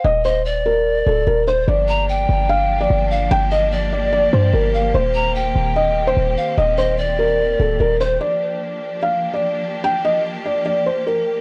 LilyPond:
<<
  \new Staff \with { instrumentName = "Pan flute" } { \time 4/4 \key g \minor \tempo 4 = 147 r8 ees''8 d''2~ d''8 c''8 | r8 bes''8 g''2~ g''8 f''8 | r8 ees''8 d''2~ d''8 f''8 | r8 bes''8 g''2~ g''8 f''8 |
r8 ees''8 d''2~ d''8 c''8 | r1 | r1 | }
  \new Staff \with { instrumentName = "Felt piano" } { \time 4/4 \key g \minor ees''8 c''8 r8 bes'4 a'8 bes'8 c''8 | d''2 f''8. d''4~ d''16 | g''8 ees''8 r8 d''8 d''8 c''8 bes'4 | c''2 ees''8. c''4~ c''16 |
ees''8 c''8 r8 bes'4 a'8 bes'8 c''8 | d''2 f''8. d''4~ d''16 | g''8 ees''8 r8 d''8 d''8 c''8 bes'4 | }
  \new Staff \with { instrumentName = "String section" } { \time 4/4 \key g \minor << { r1 | <bes g'>1~ | <bes g'>1~ | <bes g'>1~ |
<bes g'>1 | <bes g'>1~ | <bes g'>1 | } \\ { r1 | <f d'>1~ | <f d'>1 | <ees c'>1~ |
<ees c'>1 | <f d'>1~ | <f d'>1 | } >> }
  \new Staff \with { instrumentName = "808-style bass" } { \clef bass \time 4/4 \key g \minor ees,,2~ ees,,8 d,,8 ees,,4 | g,,4. g,,4. g,,4 | g,,2~ g,,8 g,8 g,,4 | ees,,4. ees,,4. ees,,8 r8 |
ees,,2~ ees,,8 d,,8 ees,,4 | r1 | r1 | }
>>